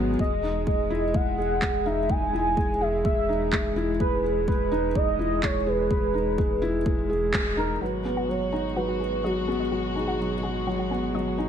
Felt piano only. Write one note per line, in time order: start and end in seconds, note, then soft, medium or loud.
0.00 0.21 F#3 medium
0.00 0.21 B3 medium
0.00 0.21 D#4 medium
0.00 0.21 F#4 medium
0.19 0.42 G#3 medium
0.43 0.66 D#4 medium
0.67 0.89 G#3 medium
0.90 1.04 E4 medium
1.14 1.37 G#3 medium
1.38 1.61 G#4 medium
1.62 1.85 G#3 medium
1.86 1.99 D#4 medium
2.09 2.32 G#3 medium
2.33 2.56 E4 medium
2.57 2.71 G#3 medium
2.81 3.04 G#4 medium
3.05 3.28 G#3 medium
3.29 3.51 D#4 medium
3.52 3.75 G#3 loud
3.76 3.90 E4 medium
4.00 4.23 G#3 medium
4.24 4.47 G#4 medium
4.48 4.71 G#3 medium
4.72 4.85 D#4 loud
4.96 5.18 G#3 medium
5.19 5.42 E4 medium
5.43 5.57 G#3 medium
5.67 5.89 G#4 medium
5.90 6.13 G#3 medium
6.14 6.37 D#4 medium
6.38 6.61 G#3 medium
6.62 6.76 E4 loud
6.86 7.08 G#3 loud
7.09 7.32 G#4 medium
7.33 7.56 G#3 medium
7.57 7.71 D#4 medium
7.81 8.04 F#3 medium
8.05 8.28 B3 medium
8.29 8.51 F#3 medium
8.52 8.66 D#4 medium
8.76 8.99 F#3 medium
9.00 9.23 F#4 medium
9.24 9.47 F#3 medium
9.48 9.61 B3 medium
9.71 9.94 F#3 medium
9.95 10.18 D#4 medium
10.19 10.33 F#3 medium
10.43 10.66 F#4 medium
10.67 10.89 F#3 medium
10.91 11.13 B3 medium
11.14 11.37 F#3 medium
11.38 11.49 D#4 medium